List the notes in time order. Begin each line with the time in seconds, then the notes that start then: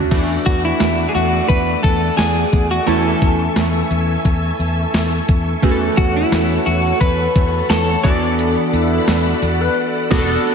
Already playing: A3 C#4 D4 F#4
0.11 E2 E3 A3 D4 F#4 D5 F#5 D6, kick, closed hi-hat, crash
0.46 E2 F#4, kick, closed hi-hat
0.65 E4
0.80 E2, snare, closed hi-hat, tambourine
1.09 G#4
1.15 E2 F#4, closed hi-hat
1.48 E2 B4, kick, closed hi-hat
1.83 E2 A4, kick, closed hi-hat
2.17 E2 G#4, snare, closed hi-hat, tambourine
2.53 E2, kick, closed hi-hat
2.71 F#4
2.86 E2 E3 A3 C#4 E4 A4 E5 G#5 C#6, closed hi-hat
3.22 E2, kick, closed hi-hat
3.56 E2, snare, closed hi-hat, tambourine
3.91 E2, closed hi-hat
4.25 E2, kick, closed hi-hat
4.59 E2, closed hi-hat
4.94 E2, snare, closed hi-hat, tambourine
5.28 E2, kick, closed hi-hat
5.62 E2 E3 A3 C#4 F#4 G#4 C#5 F#5 C#6, kick, closed hi-hat
5.71 A4
5.97 E2 F#4, kick, closed hi-hat
6.16 E4
6.32 E2, snare, closed hi-hat, tambourine
6.66 E2 F#4, closed hi-hat
7.01 E2 B4, kick, closed hi-hat
7.36 E2, kick, closed hi-hat
7.70 E2 A4, snare, closed hi-hat, tambourine
8.03 E2 E3 B3 D4 F#4 A4 D5, kick, closed hi-hat
8.39 closed hi-hat
8.67 F#4
8.73 E2 E4, closed hi-hat
9.07 E2, snare, closed hi-hat, tambourine
9.27 F#4
9.42 E2, closed hi-hat
9.61 B4
10.11 E1 B3 D4 F#4 A4, kick, snare, crash
10.18 A4